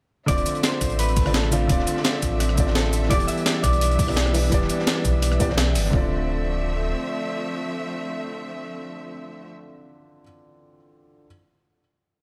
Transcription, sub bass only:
0.28 0.44 D1 loud
0.81 1.68 A1 loud
1.70 1.86 D1 loud
2.23 3.10 A1 loud
3.11 3.27 E1 loud
3.64 4.51 B1 medium
4.52 4.68 E1 loud
5.05 5.77 B1 loud
5.76 5.92 G1 loud
5.93 6.95 D1 loud

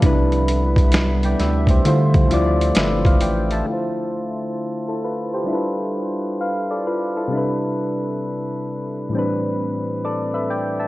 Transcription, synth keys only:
0.00 1.57 C3 medium
0.00 1.57 G3 medium
0.00 0.31 A4 medium
0.04 1.58 D4 medium
0.04 1.59 E4 medium
0.04 0.50 B4 loud
1.25 1.40 D5 soft
1.25 1.39 G5 medium
1.40 1.68 B4 medium
1.40 1.68 E5 medium
1.70 2.13 G4 medium
1.70 1.87 C5 medium
1.83 2.24 D3 medium
1.83 2.25 A3 medium
1.83 2.25 E4 medium
1.83 2.26 F4 medium
1.88 2.26 C5 loud
2.29 3.49 D3 medium
2.29 3.50 A3 medium
2.29 3.50 E4 medium
2.29 3.51 F4 medium
2.34 2.77 D5 loud
2.77 3.05 B4 medium
2.77 3.05 E5 medium
3.06 3.21 C5 medium
3.06 3.21 F5 medium
3.22 3.50 D5 medium
3.22 3.50 G5 medium
3.52 3.95 E5 soft
3.52 3.95 A5 medium
3.63 5.43 D3 medium
3.63 5.44 A3 medium
3.68 4.12 E4 medium
3.68 4.13 F4 medium
3.73 4.15 C5 medium
4.88 5.03 E4 soft
4.88 5.03 A4 medium
5.04 5.32 F4 soft
5.04 5.32 B4 medium
5.34 5.77 G4 medium
5.34 5.77 C5 medium
5.44 7.25 G3 medium
5.44 7.26 D4 medium
5.48 6.38 E4 medium
5.48 6.39 F4 medium
5.48 6.40 A4 medium
5.54 6.40 B4 medium
6.41 6.69 B4 soft
6.41 6.68 F5 medium
6.71 6.85 A4 soft
6.71 6.85 D5 medium
6.87 7.14 F4 medium
6.87 7.14 B4 medium
7.16 7.33 E4 soft
7.16 7.59 A4 medium
7.27 9.07 C3 medium
7.27 9.08 G3 medium
7.32 9.10 D4 medium
7.32 9.11 E4 medium
7.37 9.12 B4 medium
9.09 10.88 A2 medium
9.09 10.88 E3 medium
9.09 10.88 G3 medium
9.15 10.88 C4 medium
9.15 10.88 D4 medium
9.15 9.60 B4 medium
10.05 10.32 A4 soft
10.05 10.32 D5 medium
10.34 10.49 B4 medium
10.34 10.48 E5 medium
10.50 10.78 D5 medium
10.50 10.78 G5 medium
10.80 10.88 E5 soft
10.80 10.88 A5 soft

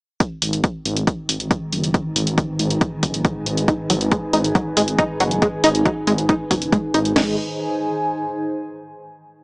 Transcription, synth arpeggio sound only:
3.68 3.73 D#4 medium
3.90 3.93 F#3 medium
4.12 4.17 G#3 medium
4.33 4.39 D#4 medium
4.55 4.58 F#3 medium
4.77 4.82 G#3 medium
4.99 5.04 D#4 medium
5.20 5.23 F#3 medium
5.42 5.47 G#3 medium
5.64 5.69 D#4 medium
5.86 5.89 F#3 medium
6.07 6.12 G#3 medium
6.29 6.34 D#4 medium
6.51 6.54 F#3 medium
6.72 6.78 G#3 medium
6.94 6.99 D#4 medium
7.16 7.36 G#3 medium

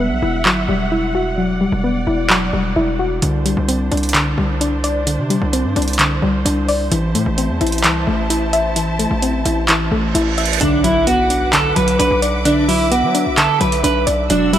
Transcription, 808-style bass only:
0.00 0.12 E1 loud
0.11 0.22 B1 loud
0.22 0.47 E1 loud
0.45 0.67 G1 loud
0.68 1.68 E1 loud
1.72 2.06 E1 loud
2.07 2.51 E1 loud
2.53 2.75 E1 loud
2.76 3.21 E1 loud
3.22 3.56 C2 loud
3.57 3.90 C2 loud
3.92 4.36 C2 loud
4.38 5.20 C2 loud
5.18 5.40 C3 loud
5.42 5.66 C2 loud
5.65 5.76 G2 loud
5.76 6.20 C2 loud
6.22 6.44 C2 loud
6.45 6.90 C2 loud
6.92 7.16 A1 loud
7.15 7.26 A2 medium
7.26 7.51 A1 loud
7.49 7.60 E2 loud
7.61 7.86 A1 loud
7.84 8.06 C2 medium
8.07 9.07 A1 loud
9.11 9.44 A1 loud
9.45 9.90 A1 loud
9.92 10.14 A1 loud
10.15 10.59 A1 loud
10.61 11.72 B1 loud
11.76 11.98 B1 loud
11.99 12.10 B1 loud
12.11 13.05 B1 loud
13.03 13.28 F#3 loud
13.26 13.48 B1 loud
13.61 13.83 B1 loud
13.84 14.06 B1 loud
14.07 14.29 B1 loud
14.30 14.59 E1 loud

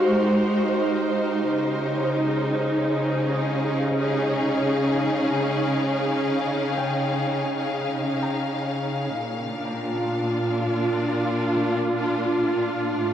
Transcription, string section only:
0.00 1.48 G#3 medium
0.00 9.17 D#4 medium
0.00 1.48 F#4 medium
0.00 4.18 G4 medium
0.00 3.94 C5 medium
1.48 9.17 C#3 medium
1.82 9.17 C#4 medium
3.01 9.18 G#4 medium
3.30 13.13 F5 medium
9.16 12.98 A#2 medium
9.45 13.13 D4 medium
9.80 13.13 F4 medium
12.98 13.13 A2 loud

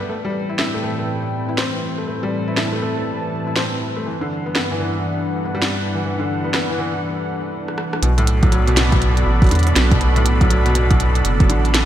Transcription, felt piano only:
0.00 0.11 F#3 medium
0.00 0.11 G3 medium
0.00 0.11 B3 medium
0.00 0.11 D4 medium
0.00 0.11 G4 medium
0.09 0.17 A3 medium
0.25 0.33 G3 medium
0.49 0.57 E4 medium
0.59 0.72 E4 medium
0.74 0.82 A3 medium
0.84 0.97 A3 medium
0.99 1.04 A3 medium
1.49 1.57 E4 medium
1.58 1.71 C4 medium
1.98 2.03 A3 medium
2.07 2.16 A3 medium
2.23 2.32 G3 medium
2.48 2.56 E4 medium
2.57 2.71 E4 medium
2.73 2.80 A3 medium
2.82 2.95 A3 medium
2.97 3.02 A3 medium
3.47 3.55 E4 medium
3.56 3.70 C4 medium
3.96 4.01 A3 medium
4.06 4.14 E3 medium
4.21 4.30 D3 medium
4.46 4.54 B3 medium
4.55 4.69 B3 medium
4.71 4.79 E3 medium
4.80 4.94 E3 medium
4.96 5.01 E3 medium
5.45 5.53 B3 medium
5.55 5.68 G3 medium
5.95 6.00 E3 medium
6.04 6.12 E3 medium
6.19 6.28 D3 medium
6.44 6.52 B3 medium
6.54 6.67 B3 medium
6.69 6.77 E3 medium
6.79 6.92 E3 medium
6.94 6.99 E3 medium
8.03 8.11 B2 medium
8.18 8.27 A2 loud
8.43 8.51 F#3 medium
8.52 8.66 F#3 loud
8.67 8.75 B2 loud
8.77 8.90 B2 loud
8.92 8.97 B2 medium
9.42 9.50 F#3 medium
9.51 9.65 D3 medium
9.91 9.96 B2 medium
10.01 10.09 B2 medium
10.16 10.25 A2 loud
10.41 10.49 F#3 medium
10.50 10.64 F#3 loud
10.66 10.74 B2 loud
10.75 10.89 B2 loud
10.91 10.96 B2 medium
11.40 11.48 F#3 medium
11.50 11.63 D3 loud

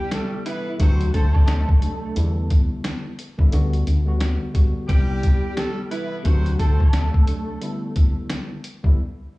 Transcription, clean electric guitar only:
0.00 0.43 G3 medium
0.00 0.43 G4 loud
0.46 0.77 E3 medium
0.46 0.76 E4 medium
0.80 1.11 F#3 medium
0.80 1.11 F#4 medium
1.14 2.12 A3 medium
1.14 2.12 A4 medium
4.89 5.88 G3 medium
4.89 5.87 G4 loud
5.91 6.22 E3 medium
5.91 6.22 E4 medium
6.26 6.57 F#3 medium
6.26 6.56 F#4 medium
6.59 7.58 A3 medium
6.59 7.57 A4 medium

